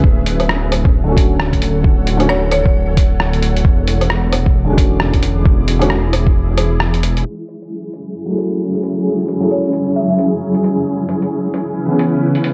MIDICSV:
0, 0, Header, 1, 7, 480
1, 0, Start_track
1, 0, Key_signature, 3, "minor"
1, 0, Tempo, 451128
1, 39, Time_signature, 4, 2, 24, 8
1, 13336, End_track
2, 0, Start_track
2, 0, Title_t, "Marimba"
2, 0, Program_c, 0, 12
2, 2444, Note_on_c, 0, 73, 89
2, 2671, Note_off_c, 0, 73, 0
2, 2684, Note_on_c, 0, 73, 90
2, 3162, Note_off_c, 0, 73, 0
2, 10122, Note_on_c, 0, 73, 81
2, 10375, Note_off_c, 0, 73, 0
2, 10598, Note_on_c, 0, 76, 78
2, 10691, Note_off_c, 0, 76, 0
2, 10746, Note_on_c, 0, 76, 68
2, 10806, Note_off_c, 0, 76, 0
2, 13336, End_track
3, 0, Start_track
3, 0, Title_t, "Synth texture"
3, 0, Program_c, 1, 99
3, 7722, Note_on_c, 1, 80, 74
3, 7728, Note_on_c, 1, 56, 72
3, 13336, Note_off_c, 1, 56, 0
3, 13336, Note_off_c, 1, 80, 0
3, 13336, End_track
4, 0, Start_track
4, 0, Title_t, "Ambient pad"
4, 0, Program_c, 2, 92
4, 39, Note_on_c, 2, 50, 84
4, 39, Note_on_c, 2, 69, 74
4, 39, Note_on_c, 2, 73, 76
4, 39, Note_on_c, 2, 78, 94
4, 1940, Note_off_c, 2, 73, 0
4, 1959, Note_on_c, 2, 73, 79
4, 3841, Note_off_c, 2, 50, 0
4, 3841, Note_off_c, 2, 69, 0
4, 3841, Note_off_c, 2, 78, 0
4, 3860, Note_off_c, 2, 73, 0
4, 3875, Note_on_c, 2, 64, 83
4, 3877, Note_on_c, 2, 86, 95
4, 3880, Note_on_c, 2, 68, 76
4, 7678, Note_off_c, 2, 64, 0
4, 7680, Note_off_c, 2, 86, 0
4, 7681, Note_off_c, 2, 68, 0
4, 7717, Note_on_c, 2, 54, 78
4, 7717, Note_on_c, 2, 61, 87
4, 7717, Note_on_c, 2, 64, 72
4, 7717, Note_on_c, 2, 68, 70
4, 11520, Note_off_c, 2, 54, 0
4, 11520, Note_off_c, 2, 61, 0
4, 11520, Note_off_c, 2, 64, 0
4, 11520, Note_off_c, 2, 68, 0
4, 11562, Note_on_c, 2, 49, 81
4, 11565, Note_on_c, 2, 64, 74
4, 11567, Note_on_c, 2, 61, 74
4, 11567, Note_on_c, 2, 71, 90
4, 13336, Note_off_c, 2, 49, 0
4, 13336, Note_off_c, 2, 61, 0
4, 13336, Note_off_c, 2, 64, 0
4, 13336, Note_off_c, 2, 71, 0
4, 13336, End_track
5, 0, Start_track
5, 0, Title_t, "Felt piano"
5, 0, Program_c, 3, 0
5, 1104, Note_on_c, 3, 50, 70
5, 1132, Note_on_c, 3, 57, 66
5, 1162, Note_on_c, 3, 61, 66
5, 1190, Note_on_c, 3, 66, 78
5, 2289, Note_off_c, 3, 50, 0
5, 2303, Note_off_c, 3, 57, 0
5, 2310, Note_on_c, 3, 50, 97
5, 2318, Note_off_c, 3, 61, 0
5, 2324, Note_on_c, 3, 57, 88
5, 2332, Note_off_c, 3, 66, 0
5, 2345, Note_on_c, 3, 61, 88
5, 2356, Note_on_c, 3, 66, 105
5, 2445, Note_off_c, 3, 50, 0
5, 2452, Note_off_c, 3, 57, 0
5, 2462, Note_off_c, 3, 61, 0
5, 2468, Note_off_c, 3, 66, 0
5, 4942, Note_on_c, 3, 50, 72
5, 4970, Note_on_c, 3, 56, 66
5, 4999, Note_on_c, 3, 61, 69
5, 5027, Note_on_c, 3, 66, 79
5, 6128, Note_off_c, 3, 50, 0
5, 6142, Note_off_c, 3, 56, 0
5, 6157, Note_off_c, 3, 61, 0
5, 6162, Note_on_c, 3, 50, 99
5, 6171, Note_off_c, 3, 66, 0
5, 6173, Note_on_c, 3, 56, 88
5, 6188, Note_on_c, 3, 61, 89
5, 6205, Note_on_c, 3, 66, 106
5, 6291, Note_off_c, 3, 50, 0
5, 6297, Note_off_c, 3, 56, 0
5, 6304, Note_off_c, 3, 61, 0
5, 6313, Note_off_c, 3, 66, 0
5, 8785, Note_on_c, 3, 54, 65
5, 8816, Note_on_c, 3, 57, 60
5, 8842, Note_on_c, 3, 64, 58
5, 8869, Note_on_c, 3, 68, 73
5, 9970, Note_off_c, 3, 54, 0
5, 9985, Note_off_c, 3, 57, 0
5, 9998, Note_off_c, 3, 64, 0
5, 10005, Note_on_c, 3, 54, 85
5, 10012, Note_off_c, 3, 68, 0
5, 10019, Note_on_c, 3, 57, 79
5, 10036, Note_on_c, 3, 64, 78
5, 10046, Note_on_c, 3, 68, 93
5, 10133, Note_off_c, 3, 54, 0
5, 10139, Note_off_c, 3, 57, 0
5, 10148, Note_off_c, 3, 64, 0
5, 10153, Note_off_c, 3, 68, 0
5, 12621, Note_on_c, 3, 52, 67
5, 12646, Note_on_c, 3, 59, 62
5, 12678, Note_on_c, 3, 61, 60
5, 12703, Note_on_c, 3, 68, 74
5, 13336, Note_off_c, 3, 52, 0
5, 13336, Note_off_c, 3, 59, 0
5, 13336, Note_off_c, 3, 61, 0
5, 13336, Note_off_c, 3, 68, 0
5, 13336, End_track
6, 0, Start_track
6, 0, Title_t, "Detuned saw bass"
6, 0, Program_c, 4, 39
6, 43, Note_on_c, 4, 26, 88
6, 3862, Note_off_c, 4, 26, 0
6, 3882, Note_on_c, 4, 28, 88
6, 7702, Note_off_c, 4, 28, 0
6, 13336, End_track
7, 0, Start_track
7, 0, Title_t, "Drums"
7, 41, Note_on_c, 9, 36, 115
7, 147, Note_off_c, 9, 36, 0
7, 280, Note_on_c, 9, 42, 53
7, 387, Note_off_c, 9, 42, 0
7, 424, Note_on_c, 9, 42, 27
7, 424, Note_on_c, 9, 77, 34
7, 525, Note_on_c, 9, 37, 101
7, 530, Note_off_c, 9, 42, 0
7, 530, Note_off_c, 9, 77, 0
7, 631, Note_off_c, 9, 37, 0
7, 766, Note_on_c, 9, 42, 54
7, 766, Note_on_c, 9, 77, 34
7, 872, Note_off_c, 9, 42, 0
7, 872, Note_off_c, 9, 77, 0
7, 906, Note_on_c, 9, 36, 103
7, 1012, Note_off_c, 9, 36, 0
7, 1242, Note_on_c, 9, 36, 103
7, 1250, Note_on_c, 9, 42, 53
7, 1348, Note_off_c, 9, 36, 0
7, 1357, Note_off_c, 9, 42, 0
7, 1485, Note_on_c, 9, 37, 106
7, 1592, Note_off_c, 9, 37, 0
7, 1626, Note_on_c, 9, 36, 60
7, 1630, Note_on_c, 9, 42, 29
7, 1722, Note_off_c, 9, 42, 0
7, 1722, Note_on_c, 9, 42, 51
7, 1732, Note_off_c, 9, 36, 0
7, 1828, Note_off_c, 9, 42, 0
7, 1961, Note_on_c, 9, 36, 116
7, 2068, Note_off_c, 9, 36, 0
7, 2202, Note_on_c, 9, 42, 51
7, 2309, Note_off_c, 9, 42, 0
7, 2340, Note_on_c, 9, 42, 28
7, 2340, Note_on_c, 9, 77, 35
7, 2437, Note_on_c, 9, 37, 100
7, 2447, Note_off_c, 9, 42, 0
7, 2447, Note_off_c, 9, 77, 0
7, 2544, Note_off_c, 9, 37, 0
7, 2676, Note_on_c, 9, 42, 54
7, 2676, Note_on_c, 9, 77, 36
7, 2782, Note_off_c, 9, 42, 0
7, 2782, Note_off_c, 9, 77, 0
7, 2826, Note_on_c, 9, 36, 98
7, 2932, Note_off_c, 9, 36, 0
7, 3162, Note_on_c, 9, 36, 99
7, 3162, Note_on_c, 9, 42, 53
7, 3268, Note_off_c, 9, 42, 0
7, 3269, Note_off_c, 9, 36, 0
7, 3404, Note_on_c, 9, 37, 99
7, 3510, Note_off_c, 9, 37, 0
7, 3547, Note_on_c, 9, 42, 29
7, 3644, Note_off_c, 9, 42, 0
7, 3644, Note_on_c, 9, 42, 50
7, 3750, Note_off_c, 9, 42, 0
7, 3793, Note_on_c, 9, 42, 29
7, 3882, Note_on_c, 9, 36, 111
7, 3900, Note_off_c, 9, 42, 0
7, 3988, Note_off_c, 9, 36, 0
7, 4123, Note_on_c, 9, 42, 53
7, 4229, Note_off_c, 9, 42, 0
7, 4270, Note_on_c, 9, 42, 28
7, 4270, Note_on_c, 9, 77, 36
7, 4362, Note_on_c, 9, 37, 99
7, 4376, Note_off_c, 9, 42, 0
7, 4376, Note_off_c, 9, 77, 0
7, 4469, Note_off_c, 9, 37, 0
7, 4602, Note_on_c, 9, 42, 55
7, 4602, Note_on_c, 9, 77, 37
7, 4708, Note_off_c, 9, 42, 0
7, 4708, Note_off_c, 9, 77, 0
7, 4748, Note_on_c, 9, 36, 94
7, 4855, Note_off_c, 9, 36, 0
7, 5083, Note_on_c, 9, 36, 98
7, 5086, Note_on_c, 9, 42, 55
7, 5190, Note_off_c, 9, 36, 0
7, 5192, Note_off_c, 9, 42, 0
7, 5319, Note_on_c, 9, 37, 99
7, 5425, Note_off_c, 9, 37, 0
7, 5464, Note_on_c, 9, 42, 29
7, 5468, Note_on_c, 9, 36, 55
7, 5561, Note_off_c, 9, 42, 0
7, 5561, Note_on_c, 9, 42, 51
7, 5574, Note_off_c, 9, 36, 0
7, 5667, Note_off_c, 9, 42, 0
7, 5804, Note_on_c, 9, 36, 116
7, 5911, Note_off_c, 9, 36, 0
7, 6042, Note_on_c, 9, 42, 55
7, 6148, Note_off_c, 9, 42, 0
7, 6188, Note_on_c, 9, 42, 31
7, 6188, Note_on_c, 9, 77, 37
7, 6277, Note_on_c, 9, 37, 100
7, 6295, Note_off_c, 9, 42, 0
7, 6295, Note_off_c, 9, 77, 0
7, 6384, Note_off_c, 9, 37, 0
7, 6523, Note_on_c, 9, 42, 55
7, 6523, Note_on_c, 9, 77, 39
7, 6629, Note_off_c, 9, 42, 0
7, 6629, Note_off_c, 9, 77, 0
7, 6667, Note_on_c, 9, 36, 96
7, 6774, Note_off_c, 9, 36, 0
7, 6996, Note_on_c, 9, 42, 56
7, 6996, Note_on_c, 9, 77, 38
7, 7103, Note_off_c, 9, 42, 0
7, 7103, Note_off_c, 9, 77, 0
7, 7237, Note_on_c, 9, 37, 99
7, 7343, Note_off_c, 9, 37, 0
7, 7383, Note_on_c, 9, 42, 31
7, 7482, Note_off_c, 9, 42, 0
7, 7482, Note_on_c, 9, 42, 55
7, 7589, Note_off_c, 9, 42, 0
7, 7628, Note_on_c, 9, 42, 30
7, 7734, Note_off_c, 9, 42, 0
7, 7962, Note_on_c, 9, 42, 51
7, 8068, Note_off_c, 9, 42, 0
7, 8109, Note_on_c, 9, 42, 28
7, 8215, Note_off_c, 9, 42, 0
7, 8440, Note_on_c, 9, 42, 52
7, 8546, Note_off_c, 9, 42, 0
7, 8917, Note_on_c, 9, 42, 52
7, 9024, Note_off_c, 9, 42, 0
7, 9303, Note_on_c, 9, 42, 28
7, 9396, Note_off_c, 9, 42, 0
7, 9396, Note_on_c, 9, 42, 50
7, 9502, Note_off_c, 9, 42, 0
7, 9878, Note_on_c, 9, 42, 50
7, 9985, Note_off_c, 9, 42, 0
7, 10018, Note_on_c, 9, 42, 28
7, 10124, Note_off_c, 9, 42, 0
7, 10353, Note_on_c, 9, 42, 52
7, 10460, Note_off_c, 9, 42, 0
7, 10837, Note_on_c, 9, 42, 52
7, 10944, Note_off_c, 9, 42, 0
7, 11221, Note_on_c, 9, 42, 29
7, 11322, Note_off_c, 9, 42, 0
7, 11322, Note_on_c, 9, 42, 52
7, 11428, Note_off_c, 9, 42, 0
7, 11797, Note_on_c, 9, 42, 50
7, 11903, Note_off_c, 9, 42, 0
7, 11940, Note_on_c, 9, 42, 28
7, 12046, Note_off_c, 9, 42, 0
7, 12276, Note_on_c, 9, 42, 53
7, 12383, Note_off_c, 9, 42, 0
7, 12760, Note_on_c, 9, 42, 51
7, 12867, Note_off_c, 9, 42, 0
7, 13141, Note_on_c, 9, 42, 29
7, 13237, Note_off_c, 9, 42, 0
7, 13237, Note_on_c, 9, 42, 50
7, 13336, Note_off_c, 9, 42, 0
7, 13336, End_track
0, 0, End_of_file